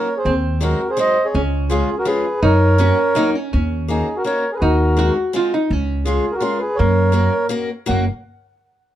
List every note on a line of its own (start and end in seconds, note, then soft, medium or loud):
0.00 0.29 A#3 medium
0.00 0.15 A#4 medium
0.00 0.18 C#5 loud
0.17 0.34 G#4 medium
0.17 0.34 C5 medium
0.25 0.72 D#2 loud
0.25 1.35 C4 medium
0.61 0.79 F#3 medium
0.61 0.80 G#3 medium
0.61 0.80 C4 medium
0.61 0.80 D#4 medium
0.61 0.88 F#4 medium
0.61 0.80 F#4 medium
0.61 0.91 A#4 medium
0.90 0.98 G#4 medium
0.90 0.98 C5 medium
0.97 1.16 F#3 medium
0.97 1.16 G#3 medium
0.97 1.16 C4 medium
0.97 1.16 D#4 medium
0.97 1.17 F#4 medium
0.97 1.24 C5 medium
0.97 1.27 D#5 loud
1.25 1.42 G#4 medium
1.25 1.42 C#5 medium
1.34 1.81 C#2 loud
1.34 2.39 C#4 loud
1.70 1.88 F3 medium
1.70 1.89 G#3 medium
1.70 1.89 C#4 medium
1.70 1.95 F4 medium
1.70 1.89 F4 medium
1.70 1.98 G#4 medium
1.70 1.89 G#4 medium
1.98 2.06 F#4 medium
1.98 2.07 A#4 medium
2.05 2.24 F3 medium
2.05 2.24 G#3 medium
2.05 2.24 C#4 medium
2.05 2.24 F4 medium
2.05 2.40 G#4 medium
2.05 2.25 G#4 medium
2.05 2.44 B4 medium
2.43 2.90 F#2 loud
2.43 2.79 D#4 loud
2.43 3.30 A#4 loud
2.43 3.30 C#5 loud
2.78 2.97 F#3 medium
2.78 2.97 A#3 medium
2.78 2.97 C#4 medium
2.78 3.16 C#4 medium
2.78 2.98 F#4 medium
2.78 2.98 A#4 medium
3.15 3.33 F#3 medium
3.15 3.34 A#3 medium
3.15 3.34 C#4 medium
3.15 3.35 D#4 loud
3.15 3.34 F#4 medium
3.15 3.35 A#4 medium
3.35 3.52 C#4 medium
3.53 4.00 D#2 loud
3.53 4.62 C#4 medium
3.88 4.07 A#3 medium
3.88 4.07 C#4 medium
3.88 4.07 D#4 medium
3.88 4.15 D#4 medium
3.88 4.08 F#4 medium
3.88 4.18 G#4 medium
4.16 4.24 F#4 medium
4.16 4.23 A#4 medium
4.24 4.43 A#3 medium
4.24 4.43 C#4 medium
4.24 4.44 D#4 medium
4.24 4.44 F#4 medium
4.24 4.50 A#4 medium
4.24 4.51 C#5 loud
4.52 4.54 G#4 medium
4.52 4.56 A#4 medium
4.52 4.58 B4 medium
4.57 4.61 G#4 medium
4.57 4.63 B4 medium
4.61 5.09 D#2 loud
4.61 4.99 D#4 medium
4.61 5.12 F#4 medium
4.61 5.13 A#4 loud
4.97 5.15 G#3 medium
4.97 5.16 C4 medium
4.97 5.16 D#4 medium
4.97 5.35 F#4 medium
4.97 5.16 F#4 medium
5.33 5.52 G#3 medium
5.33 5.52 C4 medium
5.33 5.52 D#4 medium
5.33 5.52 F4 loud
5.33 5.52 F#4 medium
5.54 5.73 D#4 medium
5.70 6.17 C#2 loud
5.70 6.83 C#4 loud
6.05 6.24 G#3 medium
6.05 6.25 C#4 medium
6.05 6.31 F4 medium
6.05 6.25 F4 medium
6.05 6.34 G#4 medium
6.05 6.25 G#4 medium
6.32 6.42 F#4 medium
6.32 6.36 A#4 medium
6.38 6.60 G#3 medium
6.38 6.60 C#4 medium
6.38 6.58 F4 medium
6.38 6.60 F4 medium
6.38 6.59 A#4 medium
6.42 6.60 G#4 medium
6.59 6.78 G#4 medium
6.59 6.76 B4 medium
6.75 7.66 A#3 medium
6.75 7.47 A#4 medium
6.75 7.46 C#5 loud
6.79 7.26 F#2 loud
7.12 7.32 A#3 medium
7.12 7.32 C#4 medium
7.12 7.32 F#4 medium
7.12 7.33 A#4 medium
7.49 7.69 A#3 medium
7.49 7.69 C#4 medium
7.49 7.69 F#4 medium
7.49 7.70 A#4 medium
7.86 8.06 F#1 medium
7.86 8.04 A#3 medium
7.86 8.04 C#4 medium
7.86 8.04 F#4 medium
7.86 8.04 A#4 medium
7.86 8.05 F#5 medium
7.91 8.06 A#3 medium